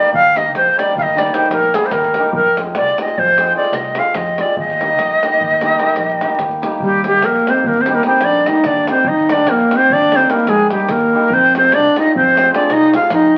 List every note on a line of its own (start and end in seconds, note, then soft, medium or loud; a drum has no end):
0.00 0.33 G3 medium
0.00 0.13 D5 medium
0.13 0.54 D#2 medium
0.13 0.39 F5 loud
0.13 davul low medium
0.34 0.75 G3 soft
0.34 0.50 A#3 soft
0.34 0.50 D#4 medium
0.34 0.51 G4 soft
0.34 0.54 D#5 medium
0.34 davul high medium
0.54 0.68 A#1 medium
0.54 0.80 C5 medium
0.54 davul high medium
0.67 davul high soft
0.76 1.14 G3 medium
0.76 0.92 A#3 soft
0.76 0.93 D#4 soft
0.76 0.92 G4 medium
0.76 0.96 D5 medium
0.76 davul high medium
0.87 davul high soft
0.95 1.28 D#2 medium
0.95 1.03 F5 medium
0.95 davul low medium
1.02 1.20 D#5 medium
1.08 davul high soft
1.15 1.32 G3 medium
1.15 1.30 A#3 medium
1.15 1.30 D#4 medium
1.15 1.31 G4 medium
1.15 1.29 D5 medium
1.15 davul high medium
1.26 1.35 D5 medium
1.26 davul high soft
1.33 1.74 G3 medium
1.33 1.48 A#3 medium
1.33 1.48 D#4 medium
1.33 1.49 G4 medium
1.33 1.51 C5 medium
1.33 davul high medium
1.42 davul high soft
1.50 1.75 A#1 medium
1.50 1.77 A#4 medium
1.50 davul high medium
1.63 davul high soft
1.74 2.15 G3 medium
1.74 1.89 A#3 soft
1.74 1.90 D#4 soft
1.74 1.90 G4 medium
1.74 1.87 G#4 medium
1.74 davul high medium
1.83 1.93 C5 medium
1.83 davul high soft
1.91 2.17 D#2 medium
1.91 2.34 A#4 medium
1.91 davul high medium
1.91 davul low medium
2.04 davul high soft
2.14 2.39 G3 medium
2.14 2.32 D#4 medium
2.14 davul high medium
2.18 2.32 A#3 medium
2.18 2.33 G4 medium
2.33 2.76 F2 medium
2.33 2.56 A#4 loud
2.33 davul low loud
2.57 2.99 G#3 soft
2.57 2.73 C4 soft
2.57 2.74 F4 soft
2.57 2.74 G#4 medium
2.57 davul high medium
2.75 2.90 C2 medium
2.75 2.98 D5 medium
2.75 davul high medium
2.87 davul high soft
2.98 3.38 G#3 soft
2.98 3.15 C4 soft
2.98 3.15 F4 soft
2.98 3.15 G#4 medium
2.98 3.20 D#5 medium
2.98 davul high medium
3.08 davul high soft
3.18 3.51 F2 medium
3.18 3.56 C5 medium
3.18 davul low medium
3.28 davul high soft
3.38 3.53 G#3 medium
3.38 3.53 C4 medium
3.38 3.53 F4 medium
3.38 3.54 G#4 medium
3.38 davul high medium
3.47 davul high soft
3.54 3.96 G#3 medium
3.54 3.70 C4 soft
3.54 3.70 F4 medium
3.54 3.71 G#4 medium
3.54 3.77 D5 medium
3.65 davul high soft
3.72 3.98 C2 medium
3.72 4.00 D#5 medium
3.72 davul high medium
3.85 davul high soft
3.95 4.37 G#3 soft
3.95 4.13 C4 soft
3.95 4.18 F5 medium
3.95 davul high medium
3.99 4.13 F4 soft
3.99 4.13 G#4 medium
4.05 davul high soft
4.14 4.40 F2 medium
4.14 4.42 D#5 medium
4.14 davul high medium
4.14 davul low soft
4.27 davul high soft
4.38 4.63 G#3 medium
4.38 4.54 C4 soft
4.38 4.55 F4 medium
4.38 4.55 G#4 medium
4.38 4.58 D5 medium
4.38 davul high medium
4.57 4.98 D#2 medium
4.57 6.36 D#5 loud
4.57 davul low medium
4.70 davul high soft
4.81 5.22 G3 medium
4.81 4.96 A#3 soft
4.81 4.97 D#4 soft
4.81 4.97 G4 soft
4.81 davul high soft
4.98 5.13 A#1 medium
4.98 davul high soft
5.11 davul high soft
5.23 5.60 G3 medium
5.23 5.39 A#3 medium
5.23 5.39 D#4 medium
5.23 5.39 G4 medium
5.23 davul high medium
5.32 davul high soft
5.41 5.75 D#2 medium
5.41 davul low medium
5.51 davul high soft
5.61 5.78 G3 medium
5.61 5.77 A#3 medium
5.61 5.77 D#4 medium
5.61 5.78 G4 medium
5.61 davul high medium
5.79 6.19 G3 medium
5.79 5.95 A#3 medium
5.79 5.95 D#4 medium
5.79 5.95 G4 medium
5.79 davul high soft
5.89 davul high soft
5.96 6.23 A#1 medium
5.96 davul high soft
6.10 davul high soft
6.21 6.61 G3 medium
6.21 6.36 A#3 soft
6.21 6.37 D#4 soft
6.21 6.38 G4 medium
6.21 davul high medium
6.29 davul high soft
6.38 6.64 D#2 medium
6.38 davul high medium
6.38 davul low soft
6.51 davul high soft
6.62 6.87 G3 medium
6.62 6.78 A#3 medium
6.62 6.78 D#4 medium
6.62 6.79 G4 medium
6.62 davul high medium
6.72 davul high soft
6.80 7.23 D#2 medium
6.80 7.05 G3 medium
6.80 7.05 G4 medium
6.80 davul low medium
7.04 7.48 G3 soft
7.04 7.27 G3 medium
7.04 7.21 A#3 soft
7.04 7.21 D#4 soft
7.04 7.26 G4 medium
7.04 7.22 G4 medium
7.04 davul high medium
7.22 7.38 A#1 medium
7.22 7.50 A#3 medium
7.22 7.51 A#4 medium
7.22 davul high medium
7.36 davul high soft
7.47 7.86 G3 medium
7.47 7.63 A#3 medium
7.47 7.67 C4 medium
7.47 7.64 D#4 soft
7.47 7.64 G4 medium
7.47 7.69 C5 medium
7.47 davul high medium
7.55 davul high soft
7.64 8.00 D#2 medium
7.64 7.81 A#3 medium
7.64 7.83 A#4 medium
7.64 davul low medium
7.76 7.96 C4 medium
7.76 davul high soft
7.81 7.96 C5 medium
7.86 8.03 G3 medium
7.86 8.02 A#3 medium
7.86 8.02 D#4 soft
7.86 8.02 G4 medium
7.86 davul high medium
7.94 8.05 A#3 medium
7.94 8.05 A#4 medium
7.94 davul high soft
8.03 8.45 G3 medium
8.03 8.20 A#3 medium
8.03 8.26 C4 medium
8.03 8.20 D#4 medium
8.03 8.20 G4 medium
8.03 8.26 C5 medium
8.03 davul high medium
8.12 davul high soft
8.21 8.47 A#1 medium
8.21 8.49 D4 medium
8.21 8.48 D5 medium
8.21 davul high medium
8.34 davul high soft
8.46 8.87 G3 medium
8.46 8.61 A#3 medium
8.46 8.62 D#4 medium
8.46 8.66 D#4 medium
8.46 8.62 G4 medium
8.46 8.68 D#5 medium
8.46 davul high medium
8.55 davul high soft
8.64 8.90 D#2 medium
8.64 8.88 D4 medium
8.64 8.89 D5 medium
8.64 davul high medium
8.64 davul low medium
8.76 davul high soft
8.87 9.29 G3 medium
8.87 9.03 A#3 medium
8.87 9.10 C4 medium
8.87 9.03 D#4 soft
8.87 9.04 G4 medium
8.87 9.09 C5 medium
8.87 davul high medium
9.04 9.47 D#2 medium
9.04 9.33 D#5 medium
9.04 davul low medium
9.09 9.35 D#4 medium
9.29 9.69 G3 medium
9.29 9.45 A#3 soft
9.29 9.52 D4 medium
9.29 9.46 D#4 soft
9.29 9.46 G4 medium
9.29 9.51 D5 medium
9.29 davul high medium
9.47 9.62 A#1 medium
9.47 9.77 A#3 medium
9.47 9.78 A#4 medium
9.47 davul high medium
9.60 davul high soft
9.71 10.11 G3 medium
9.71 9.87 A#3 soft
9.71 9.87 D#4 soft
9.71 9.87 G4 soft
9.71 davul high medium
9.75 9.95 C4 medium
9.75 9.94 C5 medium
9.80 davul high soft
9.90 10.24 D#2 medium
9.90 10.17 D4 medium
9.90 10.17 D5 loud
9.90 davul low medium
10.01 davul high soft
10.12 10.28 G3 medium
10.12 10.26 A#3 medium
10.12 10.34 C4 medium
10.12 10.27 D#4 medium
10.12 10.27 G4 medium
10.12 davul high medium
10.16 10.32 C5 medium
10.21 davul high soft
10.30 10.68 G3 medium
10.30 10.44 A#3 soft
10.30 10.49 A#3 medium
10.30 10.44 D#4 medium
10.30 10.44 G4 medium
10.30 10.51 A#4 medium
10.30 davul high medium
10.39 davul high soft
10.46 10.71 A#1 medium
10.46 10.71 G#3 medium
10.46 10.71 G#4 medium
10.46 davul high medium
10.60 davul high soft
10.69 11.12 G3 medium
10.69 10.93 G3 medium
10.69 10.85 A#3 soft
10.69 10.86 D#4 soft
10.69 10.92 G4 medium
10.69 10.86 G4 medium
10.69 davul high soft
10.80 davul high soft
10.89 11.14 D#2 medium
10.89 11.33 A#3 medium
10.89 11.35 A#4 medium
10.89 davul high medium
10.89 davul low medium
11.00 davul high soft
11.13 11.35 G3 medium
11.13 11.28 A#3 medium
11.13 11.28 D#4 medium
11.13 11.29 G4 medium
11.30 11.74 F2 medium
11.30 11.55 C4 medium
11.30 11.56 C5 loud
11.30 davul low medium
11.55 11.95 G#3 medium
11.55 11.70 C4 soft
11.55 11.76 C4 medium
11.55 11.70 F4 soft
11.55 11.70 G#4 medium
11.55 11.76 C5 loud
11.55 davul high medium
11.72 11.87 C2 medium
11.72 11.97 D4 medium
11.72 11.97 D5 loud
11.72 davul high medium
11.84 davul high soft
11.96 12.34 G#3 medium
11.96 12.11 C4 soft
11.96 12.14 D#4 medium
11.96 12.12 F4 medium
11.96 12.12 G#4 medium
11.96 12.15 D#5 medium
11.96 davul high medium
12.06 davul high soft
12.14 12.48 F2 medium
12.14 12.50 C4 medium
12.14 12.51 C5 medium
12.14 davul low medium
12.26 davul high soft
12.35 12.50 G#3 medium
12.35 12.50 C4 medium
12.35 12.50 F4 medium
12.35 12.50 G#4 medium
12.35 davul high medium
12.46 davul high soft
12.51 12.92 G#3 medium
12.51 12.67 C4 medium
12.51 12.73 D4 medium
12.51 12.67 F4 medium
12.51 12.68 G#4 medium
12.51 12.74 D5 medium
12.51 davul high medium
12.63 davul high soft
12.70 12.95 C2 medium
12.70 12.94 D#4 medium
12.70 12.94 D#5 loud
12.70 davul high medium
12.82 davul high soft
12.93 13.35 G#3 medium
12.93 13.09 C4 soft
12.93 13.11 F4 medium
12.93 13.09 F4 soft
12.93 13.10 G#4 medium
12.93 13.11 F5 medium
12.93 davul high medium
13.03 davul high soft
13.10 13.37 F2 medium
13.10 13.35 D#4 medium
13.10 13.35 D#5 medium
13.10 davul high medium
13.10 davul low medium
13.24 davul high soft